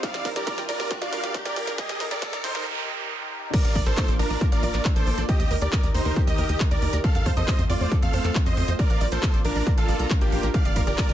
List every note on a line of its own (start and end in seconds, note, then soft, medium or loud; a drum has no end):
0.00 1.77 G3 medium
0.00 1.77 D4 medium
0.00 1.77 F4 medium
0.00 0.10 G4 medium
0.00 3.50 A#4 medium
0.00 0.30 D5 medium
0.00 0.30 F5 loud
0.00 kick loud
0.00 snare medium
0.00 closed hi-hat medium
0.00 riser medium
0.14 0.21 G1 medium
0.14 0.21 D5 loud
0.14 snare medium
0.14 closed hi-hat medium
0.25 0.32 G1 loud
0.25 0.29 A#4 loud
0.25 kick medium
0.25 snare medium
0.25 open hi-hat loud
0.36 0.43 G1 medium
0.36 0.46 G4 medium
0.36 0.63 A#4 medium
0.36 0.63 D5 loud
0.36 0.63 D5 medium
0.36 snare medium
0.36 closed hi-hat medium
0.47 0.57 A#5 medium
0.47 kick loud
0.47 snare loud
0.47 closed hi-hat medium
0.58 0.65 G1 medium
0.58 0.65 G5 medium
0.58 snare medium
0.58 closed hi-hat medium
0.69 0.76 G1 loud
0.69 0.95 A#4 medium
0.69 0.95 D5 medium
0.69 0.95 D5 loud
0.69 0.76 G5 medium
0.69 snare loud
0.69 open hi-hat loud
0.80 0.86 G1 medium
0.80 0.90 A#4 loud
0.80 snare medium
0.80 open hi-hat medium
0.91 0.97 G4 medium
0.91 kick loud
0.91 snare loud
0.91 closed hi-hat medium
1.02 1.08 G1 medium
1.02 1.37 D5 medium
1.02 1.08 D5 loud
1.02 1.37 F5 loud
1.02 snare medium
1.02 closed hi-hat medium
1.13 1.19 G1 loud
1.13 1.17 A#4 loud
1.13 snare loud
1.13 open hi-hat loud
1.23 1.30 G1 medium
1.23 1.34 G4 medium
1.23 snare medium
1.23 closed hi-hat medium
1.34 1.45 A#5 medium
1.34 kick loud
1.34 snare loud
1.34 closed hi-hat medium
1.45 1.52 G1 medium
1.45 1.72 A#4 medium
1.45 1.72 D5 loud
1.45 1.72 D5 medium
1.45 1.52 G5 medium
1.45 snare medium
1.45 closed hi-hat medium
1.56 1.63 G1 loud
1.56 1.63 G5 medium
1.56 snare loud
1.56 open hi-hat loud
1.67 1.74 G1 loud
1.67 1.77 A#4 loud
1.67 snare medium
1.67 closed hi-hat medium
1.78 3.52 D#3 medium
1.78 3.52 D#4 medium
1.78 2.05 G4 medium
1.78 1.85 G4 medium
1.78 3.52 G4 medium
1.78 2.05 D#5 loud
1.78 kick loud
1.78 snare loud
1.78 closed hi-hat medium
1.78 noise sweep medium
1.89 1.96 D#2 medium
1.89 1.96 D#5 loud
1.89 snare medium
1.89 closed hi-hat medium
2.00 2.07 D#2 loud
2.00 2.04 A#4 loud
2.00 snare loud
2.00 open hi-hat loud
2.11 2.18 D#2 medium
2.11 2.21 G4 medium
2.11 2.38 A#4 medium
2.11 2.38 D5 medium
2.11 2.38 D5 loud
2.11 snare medium
2.11 closed hi-hat medium
2.22 2.32 D#6 medium
2.22 kick loud
2.22 snare loud
2.22 closed hi-hat medium
2.33 2.40 D#2 medium
2.33 2.40 A#5 medium
2.33 snare medium
2.33 closed hi-hat medium
2.44 2.51 D#2 loud
2.44 2.66 D#4 medium
2.44 2.66 C5 loud
2.44 2.51 A#5 medium
2.44 snare loud
2.44 open hi-hat loud
2.55 2.62 D#2 medium
2.55 2.65 A#4 loud
2.55 snare medium
2.55 open hi-hat medium
3.54 5.27 A#3 medium
3.54 5.27 D4 medium
3.54 5.27 F4 loud
3.54 3.80 A#4 medium
3.54 3.60 A#4 medium
3.54 3.80 D5 loud
3.54 kick loud
3.54 closed hi-hat medium
3.54 crash loud
3.65 3.71 A#1 medium
3.65 3.71 F5 loud
3.65 closed hi-hat medium
3.75 3.82 A#1 loud
3.75 3.79 D5 loud
3.75 kick medium
3.75 open hi-hat loud
3.86 3.93 A#1 medium
3.86 4.13 A4 medium
3.86 3.96 A#4 medium
3.86 4.13 C5 medium
3.86 4.13 C5 loud
3.86 closed hi-hat medium
3.97 4.07 E6 medium
3.97 kick loud
3.97 clap loud
3.97 closed hi-hat medium
4.08 4.15 A#1 medium
4.08 4.15 D6 medium
4.08 closed hi-hat medium
4.19 4.26 A#1 loud
4.19 4.46 D4 medium
4.19 4.46 A#4 medium
4.19 4.46 A#4 loud
4.19 4.26 D6 medium
4.19 open hi-hat loud
4.30 4.37 A#1 medium
4.30 4.40 D5 loud
4.30 open hi-hat medium
4.41 4.48 A#4 medium
4.41 kick loud
4.41 closed hi-hat medium
4.52 4.59 A#1 medium
4.52 4.87 A#4 medium
4.52 4.87 D5 loud
4.52 4.59 F5 loud
4.52 closed hi-hat medium
4.63 4.70 A#1 loud
4.63 4.67 D5 loud
4.63 open hi-hat loud
4.74 4.81 A#1 medium
4.74 4.84 A#4 medium
4.74 clap soft
4.74 closed hi-hat medium
4.85 4.95 E6 medium
4.85 kick loud
4.85 clap loud
4.85 closed hi-hat medium
4.96 5.03 A#1 medium
4.96 5.22 A4 medium
4.96 5.22 C5 medium
4.96 5.22 C5 loud
4.96 5.03 D6 medium
4.96 closed hi-hat medium
5.07 5.14 A#1 loud
5.07 5.14 D6 medium
5.07 open hi-hat loud
5.18 5.24 A#1 medium
5.18 5.28 D5 loud
5.18 closed hi-hat medium
5.29 7.02 D#3 medium
5.29 7.02 D#4 medium
5.29 7.02 G4 medium
5.29 5.35 G4 medium
5.29 5.55 G4 medium
5.29 7.02 A#4 medium
5.29 5.55 D#5 loud
5.29 kick loud
5.29 closed hi-hat medium
5.40 5.46 D#2 medium
5.40 5.46 D#5 loud
5.40 closed hi-hat medium
5.51 5.57 D#2 loud
5.51 5.55 A#4 loud
5.51 open hi-hat loud
5.62 5.68 D#2 medium
5.62 5.72 G4 medium
5.62 5.88 A#4 medium
5.62 5.88 D5 medium
5.62 5.88 D5 loud
5.62 closed hi-hat medium
5.73 5.83 D#6 medium
5.73 kick loud
5.73 clap loud
5.73 closed hi-hat medium
5.83 5.90 D#2 medium
5.83 5.90 A#5 medium
5.83 closed hi-hat medium
5.94 6.01 D#2 loud
5.94 6.21 D#4 medium
5.94 6.21 C5 medium
5.94 6.21 C5 loud
5.94 6.01 A#5 medium
5.94 open hi-hat loud
6.05 6.12 D#2 medium
6.05 6.15 A#4 loud
6.05 open hi-hat medium
6.16 6.23 G4 medium
6.16 kick loud
6.16 closed hi-hat medium
6.27 6.34 D#2 medium
6.27 6.63 G4 medium
6.27 6.63 D#5 loud
6.27 6.63 D#5 medium
6.27 6.34 D#5 loud
6.27 closed hi-hat medium
6.38 6.45 D#2 loud
6.38 6.42 A#4 loud
6.38 open hi-hat loud
6.49 6.56 D#2 medium
6.49 6.59 G4 medium
6.49 closed hi-hat medium
6.60 6.70 D#6 medium
6.60 kick loud
6.60 clap loud
6.60 closed hi-hat medium
6.71 6.78 D#2 medium
6.71 6.98 A#4 medium
6.71 6.98 D5 loud
6.71 6.78 A#5 medium
6.71 closed hi-hat medium
6.82 6.89 D#2 loud
6.82 6.89 A#5 medium
6.82 open hi-hat loud
6.93 7.00 D#2 loud
6.93 7.03 A#4 loud
6.93 closed hi-hat medium
7.04 8.77 A3 medium
7.04 8.77 C4 medium
7.04 11.13 F4 loud
7.04 7.30 A4 medium
7.04 7.11 A4 medium
7.04 7.30 F5 loud
7.04 kick loud
7.04 closed hi-hat medium
7.15 7.22 F2 medium
7.15 7.22 F5 loud
7.15 closed hi-hat medium
7.26 7.33 F2 loud
7.26 7.30 C5 loud
7.26 kick medium
7.26 open hi-hat loud
7.37 7.44 F2 medium
7.37 7.47 A4 medium
7.37 7.63 C5 medium
7.37 7.63 D#5 medium
7.37 7.63 D#5 loud
7.37 closed hi-hat medium
7.48 7.58 E6 medium
7.48 kick loud
7.48 clap loud
7.48 closed hi-hat medium
7.59 7.65 F2 medium
7.59 7.65 C6 medium
7.59 closed hi-hat medium
7.69 7.76 F2 loud
7.69 7.96 F4 medium
7.69 7.96 D5 loud
7.69 7.96 D5 medium
7.69 7.76 C6 medium
7.69 open hi-hat loud
7.81 7.87 F2 medium
7.81 7.91 C5 loud
7.81 open hi-hat medium
7.92 7.98 A4 medium
7.92 kick loud
7.92 closed hi-hat medium
8.02 8.09 F2 medium
8.02 8.38 A4 medium
8.02 8.38 F5 medium
8.02 8.38 F5 loud
8.02 8.09 F5 loud
8.02 closed hi-hat medium
8.13 8.20 F2 loud
8.13 8.17 C5 loud
8.13 open hi-hat loud
8.24 8.31 F2 loud
8.24 8.34 A4 medium
8.24 clap soft
8.24 closed hi-hat medium
8.35 8.45 E6 medium
8.35 kick loud
8.35 clap loud
8.35 closed hi-hat medium
8.46 8.53 F2 medium
8.46 8.73 C5 medium
8.46 8.73 D#5 loud
8.46 8.53 C6 medium
8.46 closed hi-hat medium
8.57 8.64 F2 loud
8.57 8.64 C6 medium
8.57 open hi-hat loud
8.68 8.75 F2 medium
8.68 8.78 C5 loud
8.68 closed hi-hat medium
8.79 10.53 A#3 medium
8.79 11.13 D4 medium
8.79 8.86 A#4 medium
8.79 9.06 A#4 medium
8.79 9.06 D5 loud
8.79 kick loud
8.79 closed hi-hat medium
8.90 8.97 A#1 medium
8.90 8.97 F5 loud
8.90 closed hi-hat medium
9.01 9.08 A#1 loud
9.01 9.05 D5 loud
9.01 open hi-hat loud
9.12 9.19 A#1 medium
9.12 9.39 A4 medium
9.12 9.22 A#4 medium
9.12 9.38 C5 loud
9.12 9.39 C5 loud
9.12 closed hi-hat medium
9.23 9.33 E6 medium
9.23 kick loud
9.23 clap loud
9.23 closed hi-hat medium
9.34 9.41 A#1 medium
9.34 9.40 D6 medium
9.34 closed hi-hat medium
9.45 9.51 A#1 loud
9.45 9.71 D4 medium
9.45 9.71 A#4 loud
9.45 9.51 D6 medium
9.45 open hi-hat loud
9.56 9.62 A#1 medium
9.56 9.66 D5 loud
9.56 open hi-hat medium
9.67 9.73 A#4 medium
9.67 kick loud
9.67 closed hi-hat medium
9.78 9.84 A#1 medium
9.78 10.13 F4 medium
9.78 10.13 A4 loud
9.78 10.13 A4 medium
9.78 9.84 F5 loud
9.78 closed hi-hat medium
9.88 9.95 A#1 loud
9.88 9.99 D5 loud
9.88 open hi-hat loud
9.99 10.06 C2 medium
9.99 10.06 A#5 loud
9.99 closed hi-hat medium
10.10 10.20 A#4 loud
10.10 kick loud
10.10 clap loud
10.10 closed hi-hat medium
10.21 10.28 A#1 medium
10.21 10.48 A#3 medium
10.21 10.48 G4 loud
10.21 10.48 G4 medium
10.21 10.25 D5 medium
10.21 closed hi-hat medium
10.32 10.39 A#1 loud
10.32 10.42 F5 medium
10.32 open hi-hat loud
10.43 10.50 A#1 medium
10.43 10.50 A#4 loud
10.43 closed hi-hat medium
10.54 11.13 G3 medium
10.54 10.61 G4 medium
10.54 11.13 A#4 loud
10.54 10.81 D5 medium
10.54 10.81 F5 loud
10.54 kick loud
10.54 closed hi-hat medium
10.65 10.72 G1 medium
10.65 10.72 D5 loud
10.65 closed hi-hat medium
10.76 10.83 G1 loud
10.76 10.80 A#4 loud
10.76 kick medium
10.76 open hi-hat loud
10.76 ride medium
10.87 10.94 G1 medium
10.87 10.97 G4 medium
10.87 11.13 A#4 medium
10.87 11.13 D5 loud
10.87 11.13 D5 medium
10.87 closed hi-hat medium
10.98 11.08 A#5 medium
10.98 kick loud
10.98 clap loud
10.98 closed hi-hat medium
11.09 11.13 G1 medium
11.09 11.13 G5 medium
11.09 closed hi-hat medium